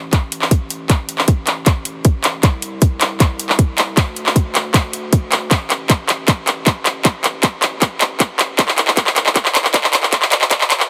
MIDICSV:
0, 0, Header, 1, 3, 480
1, 0, Start_track
1, 0, Key_signature, 0, "minor"
1, 0, Tempo, 384615
1, 1118, Time_signature, 4, 2, 24, 8
1, 13597, End_track
2, 0, Start_track
2, 0, Title_t, "Sub bass"
2, 0, Program_c, 0, 38
2, 0, Note_on_c, 0, 33, 82
2, 3015, Note_off_c, 0, 33, 0
2, 3038, Note_on_c, 0, 36, 84
2, 4934, Note_off_c, 0, 36, 0
2, 4956, Note_on_c, 0, 38, 85
2, 6853, Note_off_c, 0, 38, 0
2, 6879, Note_on_c, 0, 33, 84
2, 10695, Note_off_c, 0, 33, 0
2, 10715, Note_on_c, 0, 36, 87
2, 12613, Note_off_c, 0, 36, 0
2, 12636, Note_on_c, 0, 38, 85
2, 13597, Note_off_c, 0, 38, 0
2, 13597, End_track
3, 0, Start_track
3, 0, Title_t, "Drums"
3, 159, Note_on_c, 9, 36, 94
3, 160, Note_on_c, 9, 39, 48
3, 160, Note_on_c, 9, 42, 82
3, 283, Note_off_c, 9, 36, 0
3, 284, Note_off_c, 9, 39, 0
3, 284, Note_off_c, 9, 42, 0
3, 399, Note_on_c, 9, 42, 71
3, 521, Note_on_c, 9, 39, 44
3, 524, Note_off_c, 9, 42, 0
3, 638, Note_on_c, 9, 36, 92
3, 639, Note_on_c, 9, 42, 77
3, 646, Note_off_c, 9, 39, 0
3, 763, Note_off_c, 9, 36, 0
3, 764, Note_off_c, 9, 42, 0
3, 879, Note_on_c, 9, 42, 64
3, 1004, Note_off_c, 9, 42, 0
3, 1118, Note_on_c, 9, 36, 96
3, 1118, Note_on_c, 9, 39, 52
3, 1118, Note_on_c, 9, 42, 82
3, 1243, Note_off_c, 9, 36, 0
3, 1243, Note_off_c, 9, 39, 0
3, 1243, Note_off_c, 9, 42, 0
3, 1356, Note_on_c, 9, 42, 68
3, 1477, Note_on_c, 9, 39, 46
3, 1481, Note_off_c, 9, 42, 0
3, 1595, Note_on_c, 9, 42, 84
3, 1598, Note_on_c, 9, 36, 94
3, 1602, Note_off_c, 9, 39, 0
3, 1719, Note_off_c, 9, 42, 0
3, 1723, Note_off_c, 9, 36, 0
3, 1834, Note_on_c, 9, 39, 54
3, 1834, Note_on_c, 9, 42, 66
3, 1959, Note_off_c, 9, 39, 0
3, 1959, Note_off_c, 9, 42, 0
3, 2075, Note_on_c, 9, 39, 54
3, 2075, Note_on_c, 9, 42, 79
3, 2078, Note_on_c, 9, 36, 93
3, 2199, Note_off_c, 9, 39, 0
3, 2199, Note_off_c, 9, 42, 0
3, 2203, Note_off_c, 9, 36, 0
3, 2312, Note_on_c, 9, 42, 68
3, 2437, Note_off_c, 9, 42, 0
3, 2554, Note_on_c, 9, 42, 79
3, 2557, Note_on_c, 9, 36, 100
3, 2679, Note_off_c, 9, 42, 0
3, 2682, Note_off_c, 9, 36, 0
3, 2795, Note_on_c, 9, 39, 56
3, 2795, Note_on_c, 9, 42, 68
3, 2919, Note_off_c, 9, 39, 0
3, 2919, Note_off_c, 9, 42, 0
3, 3036, Note_on_c, 9, 39, 58
3, 3036, Note_on_c, 9, 42, 82
3, 3037, Note_on_c, 9, 36, 99
3, 3161, Note_off_c, 9, 39, 0
3, 3161, Note_off_c, 9, 42, 0
3, 3162, Note_off_c, 9, 36, 0
3, 3274, Note_on_c, 9, 42, 66
3, 3399, Note_off_c, 9, 42, 0
3, 3516, Note_on_c, 9, 42, 80
3, 3517, Note_on_c, 9, 36, 94
3, 3640, Note_off_c, 9, 42, 0
3, 3641, Note_off_c, 9, 36, 0
3, 3755, Note_on_c, 9, 39, 61
3, 3755, Note_on_c, 9, 42, 66
3, 3880, Note_off_c, 9, 39, 0
3, 3880, Note_off_c, 9, 42, 0
3, 3997, Note_on_c, 9, 36, 93
3, 3997, Note_on_c, 9, 39, 59
3, 3997, Note_on_c, 9, 42, 77
3, 4122, Note_off_c, 9, 36, 0
3, 4122, Note_off_c, 9, 39, 0
3, 4122, Note_off_c, 9, 42, 0
3, 4237, Note_on_c, 9, 42, 69
3, 4360, Note_on_c, 9, 39, 57
3, 4362, Note_off_c, 9, 42, 0
3, 4477, Note_on_c, 9, 36, 98
3, 4478, Note_on_c, 9, 42, 79
3, 4484, Note_off_c, 9, 39, 0
3, 4602, Note_off_c, 9, 36, 0
3, 4603, Note_off_c, 9, 42, 0
3, 4718, Note_on_c, 9, 39, 66
3, 4718, Note_on_c, 9, 42, 66
3, 4843, Note_off_c, 9, 39, 0
3, 4843, Note_off_c, 9, 42, 0
3, 4957, Note_on_c, 9, 36, 96
3, 4959, Note_on_c, 9, 39, 67
3, 4959, Note_on_c, 9, 42, 77
3, 5081, Note_off_c, 9, 36, 0
3, 5084, Note_off_c, 9, 39, 0
3, 5084, Note_off_c, 9, 42, 0
3, 5198, Note_on_c, 9, 42, 63
3, 5321, Note_on_c, 9, 39, 59
3, 5323, Note_off_c, 9, 42, 0
3, 5437, Note_on_c, 9, 36, 96
3, 5441, Note_on_c, 9, 42, 79
3, 5446, Note_off_c, 9, 39, 0
3, 5562, Note_off_c, 9, 36, 0
3, 5565, Note_off_c, 9, 42, 0
3, 5679, Note_on_c, 9, 39, 70
3, 5679, Note_on_c, 9, 42, 63
3, 5804, Note_off_c, 9, 39, 0
3, 5804, Note_off_c, 9, 42, 0
3, 5918, Note_on_c, 9, 36, 93
3, 5918, Note_on_c, 9, 39, 69
3, 5918, Note_on_c, 9, 42, 74
3, 6043, Note_off_c, 9, 36, 0
3, 6043, Note_off_c, 9, 39, 0
3, 6043, Note_off_c, 9, 42, 0
3, 6158, Note_on_c, 9, 42, 64
3, 6282, Note_off_c, 9, 42, 0
3, 6397, Note_on_c, 9, 42, 78
3, 6398, Note_on_c, 9, 36, 98
3, 6521, Note_off_c, 9, 42, 0
3, 6523, Note_off_c, 9, 36, 0
3, 6638, Note_on_c, 9, 39, 70
3, 6638, Note_on_c, 9, 42, 61
3, 6763, Note_off_c, 9, 39, 0
3, 6763, Note_off_c, 9, 42, 0
3, 6878, Note_on_c, 9, 36, 100
3, 6879, Note_on_c, 9, 39, 72
3, 6879, Note_on_c, 9, 42, 75
3, 7003, Note_off_c, 9, 36, 0
3, 7004, Note_off_c, 9, 39, 0
3, 7004, Note_off_c, 9, 42, 0
3, 7117, Note_on_c, 9, 39, 74
3, 7117, Note_on_c, 9, 42, 62
3, 7242, Note_off_c, 9, 39, 0
3, 7242, Note_off_c, 9, 42, 0
3, 7358, Note_on_c, 9, 36, 95
3, 7358, Note_on_c, 9, 39, 76
3, 7358, Note_on_c, 9, 42, 76
3, 7483, Note_off_c, 9, 36, 0
3, 7483, Note_off_c, 9, 39, 0
3, 7483, Note_off_c, 9, 42, 0
3, 7599, Note_on_c, 9, 39, 76
3, 7599, Note_on_c, 9, 42, 65
3, 7724, Note_off_c, 9, 39, 0
3, 7724, Note_off_c, 9, 42, 0
3, 7838, Note_on_c, 9, 39, 75
3, 7838, Note_on_c, 9, 42, 76
3, 7839, Note_on_c, 9, 36, 97
3, 7963, Note_off_c, 9, 36, 0
3, 7963, Note_off_c, 9, 39, 0
3, 7963, Note_off_c, 9, 42, 0
3, 8079, Note_on_c, 9, 39, 80
3, 8079, Note_on_c, 9, 42, 64
3, 8204, Note_off_c, 9, 39, 0
3, 8204, Note_off_c, 9, 42, 0
3, 8318, Note_on_c, 9, 36, 100
3, 8318, Note_on_c, 9, 39, 77
3, 8318, Note_on_c, 9, 42, 76
3, 8443, Note_off_c, 9, 36, 0
3, 8443, Note_off_c, 9, 39, 0
3, 8443, Note_off_c, 9, 42, 0
3, 8557, Note_on_c, 9, 39, 81
3, 8557, Note_on_c, 9, 42, 62
3, 8682, Note_off_c, 9, 39, 0
3, 8682, Note_off_c, 9, 42, 0
3, 8796, Note_on_c, 9, 39, 84
3, 8796, Note_on_c, 9, 42, 77
3, 8798, Note_on_c, 9, 36, 100
3, 8921, Note_off_c, 9, 39, 0
3, 8921, Note_off_c, 9, 42, 0
3, 8923, Note_off_c, 9, 36, 0
3, 9038, Note_on_c, 9, 39, 82
3, 9038, Note_on_c, 9, 42, 65
3, 9163, Note_off_c, 9, 39, 0
3, 9163, Note_off_c, 9, 42, 0
3, 9275, Note_on_c, 9, 39, 87
3, 9275, Note_on_c, 9, 42, 77
3, 9278, Note_on_c, 9, 36, 99
3, 9400, Note_off_c, 9, 39, 0
3, 9400, Note_off_c, 9, 42, 0
3, 9402, Note_off_c, 9, 36, 0
3, 9515, Note_on_c, 9, 39, 88
3, 9515, Note_on_c, 9, 42, 63
3, 9639, Note_off_c, 9, 39, 0
3, 9639, Note_off_c, 9, 42, 0
3, 9755, Note_on_c, 9, 39, 87
3, 9755, Note_on_c, 9, 42, 72
3, 9757, Note_on_c, 9, 36, 96
3, 9880, Note_off_c, 9, 39, 0
3, 9880, Note_off_c, 9, 42, 0
3, 9882, Note_off_c, 9, 36, 0
3, 9993, Note_on_c, 9, 39, 88
3, 9993, Note_on_c, 9, 42, 65
3, 10118, Note_off_c, 9, 39, 0
3, 10118, Note_off_c, 9, 42, 0
3, 10234, Note_on_c, 9, 39, 88
3, 10234, Note_on_c, 9, 42, 75
3, 10236, Note_on_c, 9, 36, 101
3, 10359, Note_off_c, 9, 39, 0
3, 10359, Note_off_c, 9, 42, 0
3, 10361, Note_off_c, 9, 36, 0
3, 10475, Note_on_c, 9, 39, 91
3, 10475, Note_on_c, 9, 42, 62
3, 10600, Note_off_c, 9, 39, 0
3, 10600, Note_off_c, 9, 42, 0
3, 10716, Note_on_c, 9, 36, 101
3, 10716, Note_on_c, 9, 39, 94
3, 10716, Note_on_c, 9, 42, 82
3, 10835, Note_off_c, 9, 39, 0
3, 10835, Note_on_c, 9, 39, 80
3, 10841, Note_off_c, 9, 36, 0
3, 10841, Note_off_c, 9, 42, 0
3, 10955, Note_off_c, 9, 39, 0
3, 10955, Note_on_c, 9, 39, 93
3, 10955, Note_on_c, 9, 42, 66
3, 11075, Note_off_c, 9, 39, 0
3, 11075, Note_on_c, 9, 39, 83
3, 11080, Note_off_c, 9, 42, 0
3, 11195, Note_off_c, 9, 39, 0
3, 11195, Note_on_c, 9, 39, 94
3, 11195, Note_on_c, 9, 42, 78
3, 11196, Note_on_c, 9, 36, 97
3, 11316, Note_off_c, 9, 39, 0
3, 11316, Note_on_c, 9, 39, 85
3, 11320, Note_off_c, 9, 42, 0
3, 11321, Note_off_c, 9, 36, 0
3, 11436, Note_off_c, 9, 39, 0
3, 11436, Note_on_c, 9, 39, 92
3, 11436, Note_on_c, 9, 42, 65
3, 11558, Note_off_c, 9, 39, 0
3, 11558, Note_on_c, 9, 39, 84
3, 11561, Note_off_c, 9, 42, 0
3, 11676, Note_off_c, 9, 39, 0
3, 11676, Note_on_c, 9, 36, 100
3, 11676, Note_on_c, 9, 39, 94
3, 11676, Note_on_c, 9, 42, 77
3, 11798, Note_off_c, 9, 39, 0
3, 11798, Note_on_c, 9, 39, 86
3, 11801, Note_off_c, 9, 36, 0
3, 11801, Note_off_c, 9, 42, 0
3, 11917, Note_off_c, 9, 39, 0
3, 11917, Note_on_c, 9, 39, 99
3, 11917, Note_on_c, 9, 42, 67
3, 12036, Note_off_c, 9, 39, 0
3, 12036, Note_on_c, 9, 39, 87
3, 12042, Note_off_c, 9, 42, 0
3, 12156, Note_on_c, 9, 36, 102
3, 12157, Note_off_c, 9, 39, 0
3, 12157, Note_on_c, 9, 39, 101
3, 12157, Note_on_c, 9, 42, 77
3, 12276, Note_off_c, 9, 39, 0
3, 12276, Note_on_c, 9, 39, 90
3, 12281, Note_off_c, 9, 36, 0
3, 12282, Note_off_c, 9, 42, 0
3, 12396, Note_off_c, 9, 39, 0
3, 12396, Note_on_c, 9, 39, 96
3, 12396, Note_on_c, 9, 42, 66
3, 12517, Note_off_c, 9, 39, 0
3, 12517, Note_on_c, 9, 39, 84
3, 12521, Note_off_c, 9, 42, 0
3, 12636, Note_on_c, 9, 36, 100
3, 12637, Note_off_c, 9, 39, 0
3, 12637, Note_on_c, 9, 39, 101
3, 12637, Note_on_c, 9, 42, 85
3, 12756, Note_off_c, 9, 39, 0
3, 12756, Note_on_c, 9, 39, 92
3, 12761, Note_off_c, 9, 36, 0
3, 12761, Note_off_c, 9, 42, 0
3, 12876, Note_off_c, 9, 39, 0
3, 12876, Note_on_c, 9, 39, 104
3, 12876, Note_on_c, 9, 42, 69
3, 12995, Note_off_c, 9, 39, 0
3, 12995, Note_on_c, 9, 39, 92
3, 13001, Note_off_c, 9, 42, 0
3, 13116, Note_on_c, 9, 36, 99
3, 13117, Note_off_c, 9, 39, 0
3, 13117, Note_on_c, 9, 39, 108
3, 13117, Note_on_c, 9, 42, 85
3, 13239, Note_off_c, 9, 39, 0
3, 13239, Note_on_c, 9, 39, 91
3, 13241, Note_off_c, 9, 36, 0
3, 13242, Note_off_c, 9, 42, 0
3, 13358, Note_off_c, 9, 39, 0
3, 13358, Note_on_c, 9, 39, 105
3, 13358, Note_on_c, 9, 42, 69
3, 13478, Note_off_c, 9, 39, 0
3, 13478, Note_on_c, 9, 39, 91
3, 13483, Note_off_c, 9, 42, 0
3, 13597, Note_off_c, 9, 39, 0
3, 13597, End_track
0, 0, End_of_file